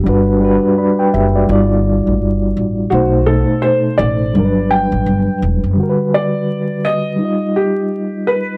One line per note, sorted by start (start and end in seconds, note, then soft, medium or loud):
0.04 0.56 G1 medium
0.04 0.32 G3 loud
0.04 0.33 D4 medium
0.04 0.34 F#4 medium
0.09 0.35 B4 loud
0.40 1.43 G3 medium
0.40 1.44 D4 medium
0.40 0.78 F#4 medium
0.45 0.79 B4 loud
0.78 0.99 D5 medium
0.78 0.98 B5 medium
0.99 1.13 B4 medium
0.99 1.12 G5 medium
1.14 1.45 F#1 medium
1.14 1.34 G4 medium
1.14 1.34 E5 medium
1.36 1.69 F#4 medium
1.36 1.50 D5 medium
1.47 1.99 G1 loud
1.47 2.64 G3 medium
1.47 2.64 D#4 medium
1.47 2.65 F4 medium
1.52 2.66 D5 loud
2.07 2.21 A1 medium
2.21 2.52 G1 loud
2.57 2.87 A1 medium
2.90 3.42 B1 loud
2.90 3.18 B2 medium
2.90 3.19 A3 medium
2.90 3.20 D#4 medium
2.90 3.28 F#4 medium
2.94 3.21 C5 medium
3.25 4.29 B2 medium
3.25 4.30 A3 medium
3.25 4.31 D#4 medium
3.25 3.64 A4 medium
3.30 4.31 A4 medium
3.62 3.99 C5 medium
3.98 4.30 A1 loud
3.98 4.72 D5 medium
4.33 4.85 G1 medium
4.33 5.51 F#3 medium
4.33 5.50 G3 medium
4.33 5.50 D4 medium
4.38 4.44 A#4 medium
4.45 5.55 B4 medium
4.71 5.38 G5 loud
4.92 5.04 A1 medium
5.06 5.25 G1 medium
5.42 5.61 E1 medium
5.63 5.76 F#1 medium
5.73 7.17 D3 medium
5.73 7.15 G3 medium
5.80 7.18 F#4 medium
5.80 5.88 A#4 medium
5.89 7.23 B4 medium
6.14 6.87 D5 medium
6.85 7.58 D#5 loud
7.16 8.57 G3 medium
7.16 8.57 D#4 medium
7.22 8.57 F4 medium
7.22 8.57 D#5 medium
7.56 8.29 G4 medium
8.27 8.57 B4 medium